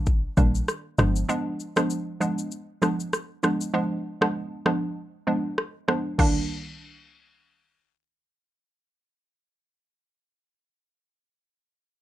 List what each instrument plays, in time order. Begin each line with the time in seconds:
Already playing: log drum bass A#1
0.06 kick, shaker
0.37 log drum bass A#1, synth pluck D#3 G3 A#3 D4, kick, shaker
0.55 shaker
0.68 cross-stick, shaker
0.98 log drum bass G1, synth pluck F3 G#3 B3 D4, cross-stick, shaker
1.16 shaker
1.29 synth pluck F3 G#3 B3 D4, shaker
1.60 shaker
1.76 synth pluck F3 G#3 B3 D4, cross-stick, shaker
1.90 shaker
2.20 synth pluck F3 G#3 B3 D4, shaker
2.39 shaker
2.51 shaker
2.82 synth pluck F3 G#3 B3 D4, cross-stick, shaker
3.00 shaker
3.13 cross-stick, shaker
3.43 synth pluck F3 G#3 B3 D4, cross-stick, shaker
3.61 shaker
3.74 synth pluck F3 G#3 B3 D4
4.21 synth pluck F3 G#3 B3 D4, cross-stick
4.66 synth pluck F3 G#3 B3 D4, cross-stick
5.27 synth pluck F3 G#3 B3 D4
5.58 cross-stick
5.88 synth pluck F3 G#3 B3 D4, cross-stick
6.18 synth pluck C2 D#3 G3 A#3 D4, kick, crash